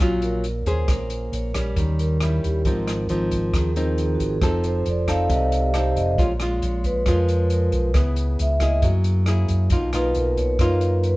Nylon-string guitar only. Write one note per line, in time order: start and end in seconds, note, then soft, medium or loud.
0.01 0.87 A#2 medium
0.01 0.45 F#3 medium
0.01 0.45 C#4 medium
0.01 0.45 F4 medium
0.67 1.52 C#4 medium
0.67 1.52 G#4 medium
0.67 1.52 C5 medium
0.89 1.55 A#3 medium
1.55 2.18 G3 medium
1.55 2.18 C#4 medium
1.78 2.64 D#3 medium
2.22 2.64 G3 soft
2.22 2.64 C#4 medium
2.22 2.64 E4 medium
2.66 3.52 G#2 soft
2.66 3.06 F3 medium
2.66 3.07 C4 soft
2.66 3.07 D#4 medium
3.10 3.72 F3 medium
3.10 3.72 C4 medium
3.10 3.73 D#4 medium
3.55 4.40 D#3 medium
3.76 4.39 F3 medium
3.76 4.39 C4 medium
3.76 4.39 D#4 medium
4.42 5.28 F3 soft
4.42 4.86 C4 medium
4.42 4.86 D#4 soft
4.42 4.86 A4 medium
5.08 5.70 C4 medium
5.08 5.71 D#4 medium
5.08 5.71 A4 medium
5.30 6.16 C3 medium
5.74 6.15 C4 soft
5.74 6.15 D#4 soft
5.74 6.15 A4 medium
6.18 7.04 A#2 medium
6.18 6.31 G#3 soft
6.18 6.32 C#4 medium
6.18 6.32 F4 medium
6.41 7.03 G#3 medium
6.41 7.04 C#4 medium
6.41 7.04 F4 medium
7.07 7.93 F3 medium
7.07 7.92 G#3 medium
7.07 7.92 C#4 medium
7.07 7.92 F4 medium
7.95 8.81 C#3 medium
7.95 8.58 B3 medium
7.95 8.58 E4 soft
7.95 8.58 G#4 medium
8.62 9.24 A#3 medium
8.62 9.24 E4 medium
8.62 9.24 G#4 medium
8.84 9.69 F#3 medium
9.28 9.70 A#3 medium
9.28 9.70 E4 medium
9.28 9.70 G#4 medium
9.72 10.57 B2 medium
9.72 9.90 A#3 soft
9.72 9.90 D#4 medium
9.72 9.90 F4 medium
9.94 10.56 A#3 medium
9.94 10.56 D#4 medium
9.94 10.57 F4 medium
10.60 11.17 F#2 medium
10.60 11.17 A#3 medium
10.60 11.17 D#4 medium
10.60 11.17 F4 medium